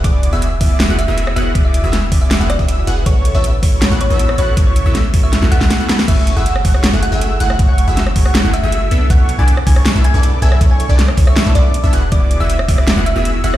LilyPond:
<<
  \new Staff \with { instrumentName = "Digital synth lead" } { \time 4/4 \key fis \minor \tempo 4 = 159 d'''8. e'''8 r16 d'''8. fis'''16 r16 e'''8. fis'''8 | d'''8. e'''8 r16 d'''8. fis'''16 r16 e'''8. fis'''8 | cis'''8. e'''8 r16 cis'''8. fis'''16 r16 e'''8. fis'''8 | cis'''8. e'''8 r16 cis'''8. fis'''16 e'''8 r16 fis'''16 fis'''16 r16 |
cis'''8. e'''8 r16 cis'''8. fis'''16 r16 e'''8. fis'''8 | cis'''8. e'''8 r16 cis'''8. fis'''16 r16 e'''8. e'''8 | cis'''8. d'''8 r16 cis'''8. e'''16 r16 d'''8. e'''8 | cis'''8. d'''8 r16 cis'''8. e'''16 d'''8 r16 e'''16 fis'''16 r16 |
d'''8. e'''8 r16 d'''8. fis'''16 r16 e'''8. fis'''8 | }
  \new Staff \with { instrumentName = "Synth pluck" } { \time 4/4 \key fis \minor d''8 r16 e''8 r16 e''8. r16 e''8. r16 e''8 | r16 e''8 r4 e''8 r16 d''4~ d''16 r16 | cis''8 r16 cis''8 r16 cis''8. r16 cis''8. r16 cis''8 | r16 cis''8 r4 e''8 r16 fis''4~ fis''16 r16 |
e''8 r16 fis''8 r16 fis''8. r16 fis''8. r16 fis''8 | r16 fis''8 r4 fis''8 r16 e''4~ e''16 r16 | fis''8 r16 gis''8 r16 gis''8. r16 gis''8. r16 gis''8 | r16 gis''8 r4 e''8 r16 d''4~ d''16 r16 |
d''8 r16 e''8 r16 e''8. r16 e''8. r16 e''8 | }
  \new Staff \with { instrumentName = "Supersaw synth" } { \time 4/4 \key fis \minor <b e' fis' gis' d''>8. <b e' fis' gis' e''>8 r16 <b e' fis' gis' d''>8. <b e' fis' gis' fis''>16 r16 <b e' fis' gis' e''>8. <b e' fis' gis' fis''>8 | <b e' fis' gis' d''>8. <b e' fis' gis' e''>8 r16 <b e' fis' gis' d''>8. <b e' fis' gis' fis''>16 r16 <b e' fis' gis' e''>8. <b e' fis' gis' fis''>8 | <b e' fis' a' cis''>8. <b e' fis' a' e''>8 r16 <b e' fis' a' cis''>8. <b e' fis' a' fis''>16 r16 <b e' fis' a' e''>8. <b e' fis' a' fis''>8 | <b e' fis' a' cis''>8. <b e' fis' a' e''>8 r16 <b e' fis' a' cis''>8. <b e' fis' a' fis''>16 <b e' fis' a' e''>8 r16 <b e' fis' a' fis''>16 <b e' fis' a' fis''>16 r16 |
<a e' fis' gis' cis''>8. <a e' fis' gis' e''>8 r16 <a e' fis' gis' cis''>8. <a e' fis' gis' fis''>16 r16 <a e' fis' gis' e''>8. <a e' fis' gis' fis''>8 | <a e' fis' gis' cis''>8. <a e' fis' gis' e''>8 r16 <a e' fis' gis' cis''>8. <a e' fis' gis' fis''>16 r16 <a e' fis' gis' e''>8. <b d' e' a' e''>8 | <b d' e' a' cis''>8. <b d' e' a' d''>8 r16 <b d' e' a' cis''>8. <b d' e' a' e''>16 r16 <b d' e' a' d''>8. <b d' e' a' e''>8 | <b d' e' a' cis''>8. <b d' e' a' d''>8 r16 <b d' e' a' cis''>8. <b d' e' a' e''>16 <b d' e' a' d''>8 r16 <b d' e' a' e''>16 <b e' fis' gis' fis''>16 r16 |
<b e' fis' gis' d''>8. <b e' fis' gis' e''>8 r16 <b e' fis' gis' d''>8. <b e' fis' gis' fis''>16 r16 <b e' fis' gis' e''>8. <b e' fis' gis' fis''>8 | }
  \new Staff \with { instrumentName = "808-style bass" } { \clef bass \time 4/4 \key fis \minor e,,8. e,,8. e,,8. e,,8 e,,8. e,,8 | e,,8. e,,8. e,,8. e,,8 e,,8. e,,8 | a,,8. a,,8. a,,8. a,,8 a,,8. a,,8 | a,,8. a,,8. a,,8. a,,16 a,,8 r4 |
fis,,8. fis,,8. fis,,8. fis,,8 fis,,8. fis,,8 | fis,,8. fis,,8. fis,,8. fis,,8 fis,,8. b,,8 | b,,8. b,,8. b,,8. b,,8 b,,8. b,,8 | b,,8. b,,8. b,,8. b,,16 b,,8. b,,16 e,,8 |
e,,8. e,,8. e,,8. e,,8 e,,8. e,,8 | }
  \new DrumStaff \with { instrumentName = "Drums" } \drummode { \time 4/4 <hh bd>8 hh8 hh8 <hho bd>8 <hh sn>8 hh8 hh16 ss16 hh8 | <hh bd>8 hh8 <hh sn>8 <hho bd>8 <hh sn>8 <hh ss>16 bd16 hh8 hh8 | <hh bd>8 hh8 hh8 <hho bd>8 <hh sn>8 hh8 hh16 ss16 hh8 | <hh bd>8 hh8 <hh sn>8 <hho bd>8 <hh sn>16 sn16 hh16 <bd sn>16 <hh sn>8 <hh sn>16 sn16 |
<cymc hh bd>8 hh8 hh16 ss16 <hho bd>16 ss16 <hh sn>8 hh8 hh8 hh16 ss16 | <hh bd>8 hh8 <hh sn>16 ss16 <hho bd>16 ss16 <hh sn>8 hh8 hh8 hh8 | <hh bd>8 hh8 hh16 ss16 <hho bd>16 ss16 <hh sn>8 hh8 hh8 hh16 ss16 | <hh bd>8 hh8 <hh sn>16 ss16 <hho bd>16 ss16 <hh sn>8 hh8 hh8 hh8 |
<hh bd>8 hh8 hh16 ss16 <hho bd>16 ss16 <hh sn>8 hh8 hh8 hh16 ss16 | }
>>